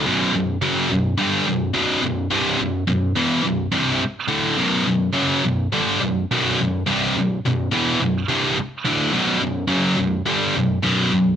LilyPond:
\new Staff \with { instrumentName = "Distorted electric guitar" } { \clef bass \time 4/4 \key b \minor \tempo 4 = 106 <b,, fis, b,>8 <b,, fis,>8 <fis, cis fis>8 <b,, fis,>8 <g, d g>8 <b,, fis,>8 <b,, fis, b,>8 <b,, fis,>8 | <c, g, c>8 <b,, fis,>8 <b,, fis,>8 <e, b, e>8 <b,, fis,>8 <c, g, c>8 r8 <d, a, d>8 | <b,, fis, b,>8 <b,, fis,>8 <fis, cis fis>8 <b,, fis,>8 <g, d g>8 <b,, fis,>8 <b,, fis, b,>8 <b,, fis,>8 | <c, g, c>8 <b,, fis,>8 <b,, fis,>8 <e, b, e>8 <b,, fis,>8 <c, g, c>8 r8 <d, a, d>8 |
<b,, fis, b,>8 <b,, fis,>8 <fis, cis fis>8 <b,, fis,>8 <g, d g>8 <b,, fis,>8 <b,, fis, b,>8 <b,, fis,>8 | }